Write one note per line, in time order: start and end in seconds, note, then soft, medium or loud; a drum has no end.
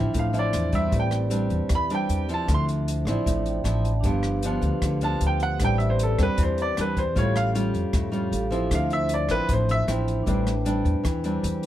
0.00 0.12 D3 medium
0.00 0.31 F3 medium
0.00 0.31 C4 medium
0.00 0.31 D4 medium
0.00 0.32 E4 medium
0.00 0.33 C5 medium
0.00 0.34 E5 medium
0.14 0.51 A1 medium
0.14 0.90 A2 medium
0.14 kick medium
0.14 closed hi-hat soft
0.19 0.36 F5 medium
0.33 0.69 F3 medium
0.33 0.69 C4 soft
0.33 0.92 D4 soft
0.33 0.70 E4 medium
0.33 0.93 C5 soft
0.33 0.93 E5 soft
0.33 closed hi-hat soft
0.39 0.73 D5 medium
0.53 0.90 E2 medium
0.53 cross-stick medium
0.53 closed hi-hat soft
0.72 1.29 G3 medium
0.72 1.29 C4 medium
0.72 1.30 D4 medium
0.72 0.93 E5 medium
0.72 kick medium
0.72 closed hi-hat soft
0.88 1.68 A2 medium
0.88 2.43 C4 soft
0.88 2.44 G4 soft
0.88 closed hi-hat soft
0.92 1.47 A1 medium
0.92 2.45 B4 soft
0.92 2.46 D5 medium
0.92 kick medium
1.00 1.15 G5 medium
1.11 cross-stick medium
1.11 closed hi-hat soft
1.30 1.70 G3 medium
1.30 1.70 C4 medium
1.30 1.70 D4 medium
1.30 closed hi-hat soft
1.50 1.60 E2 medium
1.50 closed hi-hat soft
1.69 2.07 E2 medium
1.69 2.46 E3 medium
1.69 kick medium
1.69 cross-stick medium
1.69 closed hi-hat soft
1.75 1.92 B5 loud
1.90 2.26 G3 medium
1.90 2.26 C4 medium
1.90 2.26 D4 medium
1.90 closed hi-hat soft
1.95 2.29 G5 medium
2.09 2.45 E2 medium
2.09 closed hi-hat soft
2.29 3.03 F3 medium
2.29 3.04 C4 medium
2.29 3.04 E4 medium
2.29 closed hi-hat soft
2.34 2.50 A5 medium
2.45 3.03 D2 loud
2.45 3.24 D3 medium
2.45 3.99 D4 soft
2.45 kick medium
2.45 cross-stick medium
2.45 closed hi-hat soft
2.49 4.01 C5 soft
2.49 3.24 E5 medium
2.54 2.64 C6 medium
2.69 closed hi-hat soft
2.88 closed hi-hat soft
3.05 3.15 A1 medium
3.05 3.62 F3 medium
3.05 3.63 C4 medium
3.05 3.63 E4 medium
3.05 3.24 D5 medium
3.05 cross-stick medium
3.05 closed hi-hat soft
3.26 3.63 A1 medium
3.26 4.02 A2 medium
3.26 3.44 E5 medium
3.26 kick medium
3.26 closed hi-hat soft
3.46 3.64 G5 soft
3.46 closed hi-hat soft
3.64 4.01 A1 medium
3.64 3.90 F3 medium
3.64 3.90 C4 medium
3.64 3.90 E4 medium
3.64 3.83 A5 medium
3.64 cross-stick medium
3.64 closed hi-hat soft
3.84 4.02 A5 medium
3.84 closed hi-hat soft
4.00 4.58 G1 medium
4.00 4.40 F3 medium
4.00 5.55 D4 medium
4.00 5.56 G4 medium
4.00 5.57 B4 medium
4.00 kick medium
4.00 closed hi-hat soft
4.05 4.80 G2 medium
4.05 4.40 B3 medium
4.05 4.40 D4 medium
4.05 5.58 F5 medium
4.23 cross-stick medium
4.23 closed hi-hat soft
4.43 4.99 F3 medium
4.43 4.99 B3 medium
4.43 4.99 D4 medium
4.43 closed hi-hat soft
4.61 4.71 D2 loud
4.61 closed hi-hat soft
4.82 5.18 D2 medium
4.82 5.58 D3 medium
4.82 kick medium
4.82 cross-stick medium
4.82 closed hi-hat soft
5.01 5.57 F3 medium
5.01 5.57 B3 medium
5.01 5.57 D4 medium
5.01 5.22 A5 medium
5.01 closed hi-hat soft
5.21 5.57 D2 medium
5.21 closed hi-hat soft
5.27 5.43 G5 medium
5.40 5.60 F#5 medium
5.40 closed hi-hat soft
5.57 6.14 A1 loud
5.57 7.11 C4 soft
5.57 7.12 G4 soft
5.57 kick medium
5.57 cross-stick medium
5.57 closed hi-hat soft
5.61 6.36 A2 medium
5.61 6.16 G3 medium
5.61 6.16 C4 medium
5.61 6.16 D4 medium
5.61 7.13 B4 soft
5.61 7.14 D5 medium
5.61 5.75 G5 loud
5.78 5.88 E5 medium
5.78 closed hi-hat soft
5.90 6.00 C5 medium
5.99 6.20 A4 medium
5.99 closed hi-hat soft
6.19 6.27 E2 medium
6.19 6.74 G3 medium
6.19 6.74 C4 medium
6.19 6.74 D4 medium
6.19 kick medium
6.19 cross-stick medium
6.19 closed hi-hat soft
6.23 6.39 B4 medium
6.37 6.74 E2 medium
6.37 7.13 E3 medium
6.37 kick medium
6.37 closed hi-hat soft
6.43 6.59 C5 medium
6.58 closed hi-hat soft
6.62 6.78 D5 medium
6.77 7.13 E2 medium
6.77 7.02 G3 medium
6.77 7.02 C4 medium
6.77 7.02 D4 medium
6.77 6.98 B4 medium
6.77 cross-stick medium
6.77 closed hi-hat soft
6.97 7.16 C5 medium
6.97 kick medium
6.97 closed hi-hat soft
7.13 7.70 A1 medium
7.13 7.91 A2 medium
7.13 7.51 G3 medium
7.13 8.28 C#4 soft
7.13 7.51 C#4 medium
7.13 7.52 F4 medium
7.13 8.30 G4 soft
7.13 8.30 A4 soft
7.13 kick medium
7.13 closed hi-hat soft
7.19 7.36 C#5 medium
7.19 8.31 F5 medium
7.36 7.48 F5 loud
7.36 cross-stick medium
7.36 closed hi-hat soft
7.55 8.10 G3 medium
7.55 8.10 C#4 medium
7.55 8.10 F4 medium
7.55 closed hi-hat soft
7.74 7.83 F2 medium
7.74 closed hi-hat soft
7.93 8.30 F2 medium
7.93 8.30 A2 medium
7.93 kick medium
7.93 cross-stick medium
7.93 closed hi-hat soft
8.12 8.48 G3 medium
8.12 8.48 C#4 medium
8.12 8.48 F4 medium
8.12 closed hi-hat soft
8.31 8.68 A1 medium
8.31 8.70 G4 medium
8.31 8.71 A4 medium
8.31 8.71 F5 medium
8.31 closed hi-hat soft
8.51 9.26 F3 medium
8.51 9.26 C4 medium
8.51 9.26 E4 medium
8.51 closed hi-hat soft
8.67 9.47 D3 medium
8.67 10.22 D4 medium
8.67 kick medium
8.71 9.25 D2 loud
8.71 10.24 C5 soft
8.71 10.25 E5 medium
8.71 8.92 F5 medium
8.71 cross-stick medium
8.71 closed hi-hat soft
8.90 9.11 E5 loud
8.90 closed hi-hat soft
9.09 closed hi-hat soft
9.14 9.31 D5 medium
9.29 9.38 A1 medium
9.29 9.85 F3 medium
9.29 9.85 C4 medium
9.29 9.85 E4 medium
9.29 9.49 B4 medium
9.29 cross-stick medium
9.29 closed hi-hat soft
9.49 9.85 A1 medium
9.49 10.25 A2 medium
9.49 kick medium
9.49 closed hi-hat soft
9.53 9.70 C5 medium
9.69 9.82 E5 loud
9.69 closed hi-hat soft
9.87 10.24 A1 medium
9.87 10.24 F3 medium
9.87 10.24 C4 medium
9.87 10.24 E4 medium
9.87 cross-stick medium
9.87 closed hi-hat soft
10.08 closed hi-hat soft
10.23 10.81 A1 loud
10.23 11.03 A2 medium
10.23 10.52 G3 medium
10.23 11.58 D4 medium
10.23 11.60 B4 medium
10.23 kick medium
10.23 closed hi-hat soft
10.27 10.52 C4 medium
10.27 10.52 D4 medium
10.27 11.61 C5 medium
10.27 11.62 G5 medium
10.47 cross-stick medium
10.47 closed hi-hat soft
10.65 11.04 G3 medium
10.65 11.04 C4 medium
10.65 11.04 D4 medium
10.65 closed hi-hat soft
10.85 10.94 E2 medium
10.85 closed hi-hat soft
11.03 11.41 E2 medium
11.03 11.66 E3 medium
11.03 kick medium
11.03 cross-stick medium
11.03 closed hi-hat soft
11.24 11.66 G3 medium
11.24 11.66 C4 medium
11.24 11.66 D4 medium
11.24 closed hi-hat soft
11.43 11.66 E2 loud
11.43 closed hi-hat soft
11.62 11.66 D4 soft
11.62 closed hi-hat soft